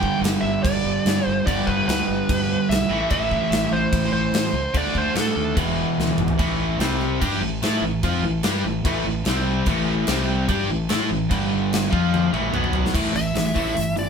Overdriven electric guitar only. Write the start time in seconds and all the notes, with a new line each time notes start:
Already playing: G2 D3 G3 D4
1.45 G2 D3 G3
2.89 A2 E3 A3
4.74 D3 A3 D4
5.54 E2 B2 E3
6.38 A2 E3 A3
6.80 C3 G3 C4
7.20 G3 D4 G4
7.41 A2 E3
7.62 A3 E4 A4
7.83 A2 E3
8.04 F3 C4 F4
8.24 A2 E3
8.44 G3 D4 G4
8.65 A2 E3
8.85 A2 E3 A3
9.06 A2 E3
9.27 C3 G3 C4
9.67 A2 E3 A3
10.08 C3 G3 C4
10.48 G3 D4 G4
10.70 A2 E3
10.89 A3 E4 A4
11.09 A2 E3
11.29 G2 D3 G3
11.90 F3 C4 F4
12.32 A2 E3 A3
12.52 B2 F#3 B3
12.93 A2 E3 A3
13.12 A2 E3
13.34 A2 E3
13.55 A2 E3 A3
13.75 A2 E3
13.97 A2 E3